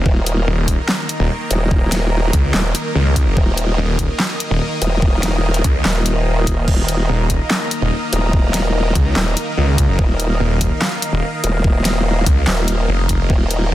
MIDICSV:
0, 0, Header, 1, 5, 480
1, 0, Start_track
1, 0, Tempo, 413793
1, 67, Time_signature, 4, 2, 24, 8
1, 15945, End_track
2, 0, Start_track
2, 0, Title_t, "Supersaw synth"
2, 0, Program_c, 0, 81
2, 0, Note_on_c, 0, 51, 79
2, 0, Note_on_c, 0, 58, 76
2, 0, Note_on_c, 0, 70, 77
2, 0, Note_on_c, 0, 75, 76
2, 67, Note_on_c, 0, 82, 89
2, 3893, Note_off_c, 0, 82, 0
2, 3907, Note_on_c, 0, 87, 93
2, 7733, Note_off_c, 0, 87, 0
2, 7746, Note_on_c, 0, 82, 87
2, 11572, Note_off_c, 0, 82, 0
2, 11587, Note_on_c, 0, 77, 89
2, 15413, Note_off_c, 0, 77, 0
2, 15427, Note_on_c, 0, 82, 90
2, 15945, Note_off_c, 0, 51, 0
2, 15945, Note_off_c, 0, 58, 0
2, 15945, Note_off_c, 0, 70, 0
2, 15945, Note_off_c, 0, 75, 0
2, 15945, Note_off_c, 0, 82, 0
2, 15945, End_track
3, 0, Start_track
3, 0, Title_t, "Detuned saw bass"
3, 0, Program_c, 1, 39
3, 546, Note_on_c, 1, 27, 98
3, 890, Note_off_c, 1, 27, 0
3, 1389, Note_on_c, 1, 27, 97
3, 1488, Note_off_c, 1, 27, 0
3, 2707, Note_on_c, 1, 37, 99
3, 2928, Note_off_c, 1, 37, 0
3, 3427, Note_on_c, 1, 37, 95
3, 3770, Note_off_c, 1, 37, 0
3, 3790, Note_on_c, 1, 30, 94
3, 3888, Note_off_c, 1, 30, 0
3, 4387, Note_on_c, 1, 27, 96
3, 4730, Note_off_c, 1, 27, 0
3, 5229, Note_on_c, 1, 27, 98
3, 5328, Note_off_c, 1, 27, 0
3, 6547, Note_on_c, 1, 37, 100
3, 6768, Note_off_c, 1, 37, 0
3, 8227, Note_on_c, 1, 27, 94
3, 8570, Note_off_c, 1, 27, 0
3, 9069, Note_on_c, 1, 27, 103
3, 9168, Note_off_c, 1, 27, 0
3, 10387, Note_on_c, 1, 37, 99
3, 10608, Note_off_c, 1, 37, 0
3, 11107, Note_on_c, 1, 37, 96
3, 11450, Note_off_c, 1, 37, 0
3, 11469, Note_on_c, 1, 30, 98
3, 11568, Note_off_c, 1, 30, 0
3, 12066, Note_on_c, 1, 27, 97
3, 12410, Note_off_c, 1, 27, 0
3, 12909, Note_on_c, 1, 27, 100
3, 13008, Note_off_c, 1, 27, 0
3, 14226, Note_on_c, 1, 37, 103
3, 14448, Note_off_c, 1, 37, 0
3, 14946, Note_on_c, 1, 29, 93
3, 15408, Note_off_c, 1, 29, 0
3, 15907, Note_on_c, 1, 27, 96
3, 15945, Note_off_c, 1, 27, 0
3, 15945, End_track
4, 0, Start_track
4, 0, Title_t, "Wobble bass"
4, 0, Program_c, 2, 39
4, 67, Note_on_c, 2, 27, 93
4, 528, Note_off_c, 2, 27, 0
4, 1748, Note_on_c, 2, 27, 94
4, 2688, Note_off_c, 2, 27, 0
4, 2947, Note_on_c, 2, 27, 102
4, 3168, Note_off_c, 2, 27, 0
4, 3907, Note_on_c, 2, 27, 89
4, 4368, Note_off_c, 2, 27, 0
4, 5587, Note_on_c, 2, 27, 99
4, 6528, Note_off_c, 2, 27, 0
4, 6787, Note_on_c, 2, 27, 101
4, 7728, Note_off_c, 2, 27, 0
4, 7747, Note_on_c, 2, 27, 93
4, 8208, Note_off_c, 2, 27, 0
4, 9427, Note_on_c, 2, 27, 96
4, 10368, Note_off_c, 2, 27, 0
4, 10627, Note_on_c, 2, 27, 101
4, 10848, Note_off_c, 2, 27, 0
4, 11587, Note_on_c, 2, 27, 92
4, 12048, Note_off_c, 2, 27, 0
4, 13267, Note_on_c, 2, 27, 95
4, 14208, Note_off_c, 2, 27, 0
4, 14466, Note_on_c, 2, 27, 105
4, 14928, Note_off_c, 2, 27, 0
4, 15426, Note_on_c, 2, 27, 96
4, 15888, Note_off_c, 2, 27, 0
4, 15945, End_track
5, 0, Start_track
5, 0, Title_t, "Drums"
5, 67, Note_on_c, 9, 36, 118
5, 183, Note_off_c, 9, 36, 0
5, 307, Note_on_c, 9, 42, 72
5, 423, Note_off_c, 9, 42, 0
5, 787, Note_on_c, 9, 36, 62
5, 787, Note_on_c, 9, 42, 80
5, 903, Note_off_c, 9, 36, 0
5, 903, Note_off_c, 9, 42, 0
5, 1027, Note_on_c, 9, 38, 116
5, 1027, Note_on_c, 9, 39, 85
5, 1143, Note_off_c, 9, 38, 0
5, 1143, Note_off_c, 9, 39, 0
5, 1267, Note_on_c, 9, 42, 77
5, 1383, Note_off_c, 9, 42, 0
5, 1747, Note_on_c, 9, 42, 79
5, 1863, Note_off_c, 9, 42, 0
5, 1987, Note_on_c, 9, 36, 114
5, 2103, Note_off_c, 9, 36, 0
5, 2227, Note_on_c, 9, 38, 59
5, 2227, Note_on_c, 9, 42, 79
5, 2343, Note_off_c, 9, 38, 0
5, 2343, Note_off_c, 9, 42, 0
5, 2707, Note_on_c, 9, 36, 104
5, 2707, Note_on_c, 9, 42, 85
5, 2823, Note_off_c, 9, 36, 0
5, 2823, Note_off_c, 9, 42, 0
5, 2947, Note_on_c, 9, 38, 118
5, 2947, Note_on_c, 9, 39, 89
5, 3063, Note_off_c, 9, 38, 0
5, 3063, Note_off_c, 9, 39, 0
5, 3187, Note_on_c, 9, 42, 79
5, 3303, Note_off_c, 9, 42, 0
5, 3667, Note_on_c, 9, 36, 59
5, 3667, Note_on_c, 9, 42, 77
5, 3783, Note_off_c, 9, 36, 0
5, 3783, Note_off_c, 9, 42, 0
5, 3907, Note_on_c, 9, 36, 116
5, 4023, Note_off_c, 9, 36, 0
5, 4147, Note_on_c, 9, 42, 82
5, 4263, Note_off_c, 9, 42, 0
5, 4627, Note_on_c, 9, 36, 60
5, 4627, Note_on_c, 9, 42, 81
5, 4743, Note_off_c, 9, 36, 0
5, 4743, Note_off_c, 9, 42, 0
5, 4867, Note_on_c, 9, 38, 115
5, 4867, Note_on_c, 9, 39, 85
5, 4983, Note_off_c, 9, 38, 0
5, 4983, Note_off_c, 9, 39, 0
5, 5107, Note_on_c, 9, 42, 81
5, 5223, Note_off_c, 9, 42, 0
5, 5587, Note_on_c, 9, 42, 78
5, 5703, Note_off_c, 9, 42, 0
5, 5827, Note_on_c, 9, 36, 111
5, 5943, Note_off_c, 9, 36, 0
5, 6067, Note_on_c, 9, 38, 59
5, 6067, Note_on_c, 9, 42, 82
5, 6183, Note_off_c, 9, 38, 0
5, 6183, Note_off_c, 9, 42, 0
5, 6430, Note_on_c, 9, 42, 40
5, 6546, Note_off_c, 9, 42, 0
5, 6547, Note_on_c, 9, 36, 105
5, 6547, Note_on_c, 9, 42, 86
5, 6663, Note_off_c, 9, 36, 0
5, 6663, Note_off_c, 9, 42, 0
5, 6787, Note_on_c, 9, 38, 117
5, 6787, Note_on_c, 9, 39, 95
5, 6903, Note_off_c, 9, 38, 0
5, 6903, Note_off_c, 9, 39, 0
5, 7027, Note_on_c, 9, 42, 85
5, 7143, Note_off_c, 9, 42, 0
5, 7507, Note_on_c, 9, 36, 59
5, 7507, Note_on_c, 9, 42, 84
5, 7623, Note_off_c, 9, 36, 0
5, 7623, Note_off_c, 9, 42, 0
5, 7746, Note_on_c, 9, 49, 78
5, 7747, Note_on_c, 9, 36, 118
5, 7862, Note_off_c, 9, 49, 0
5, 7863, Note_off_c, 9, 36, 0
5, 7987, Note_on_c, 9, 42, 84
5, 8103, Note_off_c, 9, 42, 0
5, 8466, Note_on_c, 9, 42, 86
5, 8467, Note_on_c, 9, 36, 62
5, 8582, Note_off_c, 9, 42, 0
5, 8583, Note_off_c, 9, 36, 0
5, 8706, Note_on_c, 9, 38, 118
5, 8706, Note_on_c, 9, 39, 92
5, 8822, Note_off_c, 9, 38, 0
5, 8822, Note_off_c, 9, 39, 0
5, 8947, Note_on_c, 9, 42, 85
5, 9063, Note_off_c, 9, 42, 0
5, 9427, Note_on_c, 9, 42, 84
5, 9543, Note_off_c, 9, 42, 0
5, 9667, Note_on_c, 9, 36, 122
5, 9783, Note_off_c, 9, 36, 0
5, 9907, Note_on_c, 9, 38, 65
5, 9907, Note_on_c, 9, 42, 84
5, 10023, Note_off_c, 9, 38, 0
5, 10023, Note_off_c, 9, 42, 0
5, 10387, Note_on_c, 9, 36, 110
5, 10387, Note_on_c, 9, 42, 81
5, 10503, Note_off_c, 9, 36, 0
5, 10503, Note_off_c, 9, 42, 0
5, 10627, Note_on_c, 9, 38, 119
5, 10627, Note_on_c, 9, 39, 95
5, 10743, Note_off_c, 9, 38, 0
5, 10743, Note_off_c, 9, 39, 0
5, 10867, Note_on_c, 9, 42, 79
5, 10983, Note_off_c, 9, 42, 0
5, 11347, Note_on_c, 9, 36, 63
5, 11347, Note_on_c, 9, 42, 84
5, 11463, Note_off_c, 9, 36, 0
5, 11463, Note_off_c, 9, 42, 0
5, 11587, Note_on_c, 9, 36, 127
5, 11703, Note_off_c, 9, 36, 0
5, 11827, Note_on_c, 9, 42, 77
5, 11943, Note_off_c, 9, 42, 0
5, 12307, Note_on_c, 9, 36, 65
5, 12307, Note_on_c, 9, 42, 83
5, 12423, Note_off_c, 9, 36, 0
5, 12423, Note_off_c, 9, 42, 0
5, 12547, Note_on_c, 9, 38, 126
5, 12547, Note_on_c, 9, 39, 96
5, 12663, Note_off_c, 9, 38, 0
5, 12663, Note_off_c, 9, 39, 0
5, 12787, Note_on_c, 9, 42, 78
5, 12903, Note_off_c, 9, 42, 0
5, 13267, Note_on_c, 9, 42, 80
5, 13383, Note_off_c, 9, 42, 0
5, 13506, Note_on_c, 9, 36, 127
5, 13622, Note_off_c, 9, 36, 0
5, 13747, Note_on_c, 9, 38, 63
5, 13747, Note_on_c, 9, 42, 72
5, 13863, Note_off_c, 9, 38, 0
5, 13863, Note_off_c, 9, 42, 0
5, 14226, Note_on_c, 9, 36, 114
5, 14227, Note_on_c, 9, 42, 81
5, 14342, Note_off_c, 9, 36, 0
5, 14343, Note_off_c, 9, 42, 0
5, 14466, Note_on_c, 9, 38, 124
5, 14466, Note_on_c, 9, 39, 92
5, 14582, Note_off_c, 9, 38, 0
5, 14582, Note_off_c, 9, 39, 0
5, 14707, Note_on_c, 9, 42, 77
5, 14823, Note_off_c, 9, 42, 0
5, 15187, Note_on_c, 9, 36, 65
5, 15187, Note_on_c, 9, 42, 77
5, 15303, Note_off_c, 9, 36, 0
5, 15303, Note_off_c, 9, 42, 0
5, 15426, Note_on_c, 9, 36, 119
5, 15542, Note_off_c, 9, 36, 0
5, 15667, Note_on_c, 9, 42, 75
5, 15783, Note_off_c, 9, 42, 0
5, 15945, End_track
0, 0, End_of_file